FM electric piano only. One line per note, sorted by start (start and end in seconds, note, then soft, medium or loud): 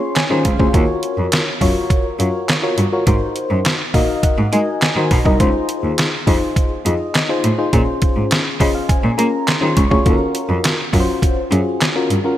0.00 0.20 C#4 medium
0.00 0.21 F4 medium
0.00 0.21 G#4 medium
0.00 0.21 C#5 medium
0.00 0.14 C6 medium
0.16 0.43 G#5 medium
0.30 0.53 C#4 medium
0.30 0.53 F4 medium
0.30 0.53 G#4 medium
0.30 0.53 C5 loud
0.45 0.72 F5 medium
0.59 0.71 C#4 medium
0.59 0.71 F4 medium
0.59 0.71 G#4 medium
0.59 0.71 C5 loud
0.74 1.42 F4 medium
0.74 1.42 F#4 medium
0.74 1.42 A#4 medium
0.74 1.42 C#5 medium
1.61 2.06 F4 medium
1.61 2.06 F#4 medium
1.61 2.07 A#4 medium
1.61 2.07 C#5 loud
2.19 2.53 F4 medium
2.19 2.53 F#4 medium
2.19 2.54 A#4 medium
2.19 2.54 C#5 medium
2.62 2.85 F4 medium
2.62 2.86 F#4 medium
2.62 2.86 A#4 medium
2.62 2.86 C#5 loud
2.92 3.04 F4 medium
2.92 3.04 F#4 medium
2.92 3.04 A#4 medium
2.92 3.04 C#5 medium
3.07 3.74 D#4 medium
3.07 3.75 F#4 medium
3.07 3.75 A#4 medium
3.07 3.75 C5 loud
3.94 4.39 D#4 medium
3.94 4.39 F#4 medium
3.94 4.40 A#4 medium
3.94 4.40 D#5 medium
3.94 4.21 F5 medium
4.24 4.51 F#5 medium
4.52 4.86 D#4 medium
4.52 4.87 F#4 medium
4.52 4.87 A#4 medium
4.52 4.87 D#5 medium
4.52 4.80 G#5 medium
4.83 5.09 G#5 medium
4.97 5.19 D#4 medium
4.97 5.19 F#4 medium
4.97 5.19 A#4 medium
4.97 5.19 C5 loud
5.12 5.38 A#5 medium
5.25 5.37 D#4 medium
5.25 5.37 F#4 medium
5.25 5.37 A#4 medium
5.25 5.37 D#5 medium
5.40 6.07 D#4 medium
5.40 6.08 F4 medium
5.40 6.08 G#4 medium
5.40 6.08 C5 loud
6.27 6.72 D#4 medium
6.27 6.72 F4 medium
6.27 6.72 G#4 medium
6.27 6.73 C5 medium
6.86 7.19 D#4 medium
6.86 7.20 F4 medium
6.86 7.20 G#4 medium
6.86 7.20 D#5 medium
7.29 7.52 D#4 medium
7.29 7.52 F4 medium
7.29 7.52 G#4 medium
7.29 7.52 C5 medium
7.58 7.70 D#4 medium
7.58 7.70 F4 medium
7.58 7.70 G#4 medium
7.58 7.70 C5 loud
7.73 8.40 C#4 medium
7.73 8.41 F4 medium
7.73 8.41 G#4 medium
7.73 8.41 C5 medium
8.60 9.05 C#4 medium
8.60 9.05 F4 medium
8.60 9.06 G#4 medium
8.60 9.06 C5 medium
8.60 8.74 D#5 medium
8.75 8.88 F5 medium
8.89 9.16 G#5 medium
9.18 9.52 C#4 medium
9.18 9.52 F4 medium
9.18 9.52 G#4 medium
9.18 9.52 A#4 medium
9.18 9.45 A#5 medium
9.47 9.74 C6 medium
9.61 9.84 C#4 medium
9.61 9.84 F4 medium
9.61 9.84 G#4 medium
9.61 9.85 C5 loud
9.77 10.04 C#6 medium
9.90 10.02 C#4 medium
9.90 10.02 F4 medium
9.90 10.03 G#4 medium
9.90 10.03 C#5 medium
10.05 10.73 C#4 medium
10.05 10.73 F4 medium
10.05 10.73 F#4 medium
10.05 10.12 A4 medium
10.12 10.77 A#4 loud
10.93 11.38 C#4 medium
10.93 11.38 F4 medium
10.93 11.38 F#4 medium
10.93 11.00 A#4 medium
11.00 11.42 C5 loud
11.51 11.85 C#4 medium
11.51 11.85 F4 medium
11.51 11.86 F#4 medium
11.51 11.86 G#4 medium
11.96 12.18 C#4 medium
11.96 12.18 F4 medium
11.96 12.18 F#4 medium
11.96 12.18 A#4 medium
12.24 12.36 C#4 medium
12.24 12.36 F4 medium
12.24 12.36 F#4 medium
12.24 12.36 A#4 loud